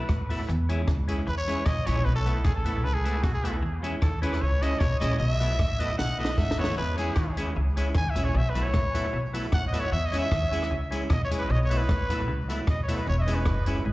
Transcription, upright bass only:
0.09 0.43 A1 medium
0.49 0.82 E2 loud
0.88 1.21 C#2 loud
1.28 1.61 E2 medium
1.66 1.84 B1 medium
1.87 2.03 A#1 medium
2.06 2.39 B1 loud
2.45 2.84 A1 loud
2.84 3.23 C#2 medium
3.23 3.63 B1 medium
3.63 3.96 E2 loud
4.02 4.36 D#2 medium
4.41 4.75 C#2 medium
4.81 4.99 B1 medium
5.01 5.17 A#1 medium
5.20 5.53 B1 loud
5.59 5.93 A1 loud
5.99 6.32 B1 medium
6.38 6.56 G#1 medium
6.59 6.75 D#2 medium
6.78 7.11 E2 loud
7.16 7.50 D#2 loud
7.56 7.90 C#2 medium
7.95 8.13 D#2 medium
8.16 8.32 A#1 loud
8.35 8.68 B1 loud
8.74 9.08 A1 medium
9.13 9.47 B1 medium
9.53 9.86 A1 medium
9.92 10.25 E2 loud
10.32 10.65 D#2 loud
10.71 11.04 C#2 medium
11.10 11.44 B1 medium
11.50 11.83 B1 loud
11.89 12.29 A1 medium
12.29 12.62 C#2 medium
12.67 13.01 B1 medium
13.07 13.46 E1 loud
13.46 13.79 F#1 medium
13.85 13.93 G#1 medium

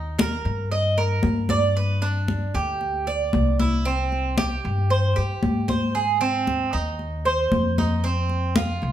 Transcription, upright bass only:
0.00 0.39 D#2 medium
0.45 1.20 G2 loud
1.24 2.48 G2 medium
2.54 3.29 D2 loud
3.34 4.58 C2 medium
4.65 5.13 G2 loud
5.18 5.42 G2 medium
5.43 6.67 G#2 medium
6.74 7.48 D#2 medium
7.51 8.76 F2 medium
8.83 8.92 C2 loud

